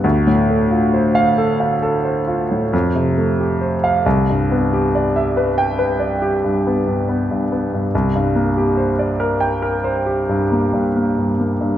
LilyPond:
<<
  \new Staff \with { instrumentName = "Grand piano" } { \time 9/8 \key bes \lydian \tempo 4. = 46 r4 r16 f''8 r2 r8 f''16 | r4. r16 g''8 r2 r16 | r4. r16 g''8 r2 r16 | }
  \new Staff \with { instrumentName = "Grand piano" } { \time 9/8 \key bes \lydian d,16 a,16 a16 f'16 c''8 a'16 f''16 a'16 c''16 f'16 a,16 f,16 c16 a16 g'16 c''8 | c,16 g,16 b16 g'16 d''16 e''16 b'8 b'16 d''16 g'16 g,16 b16 g,16 b16 g,16 b16 g,16 | c,16 g,16 bes16 g'16 c''16 d''16 bes'8 bes'16 c''16 g'16 g,16 bes16 g,16 bes16 g,16 bes16 g,16 | }
>>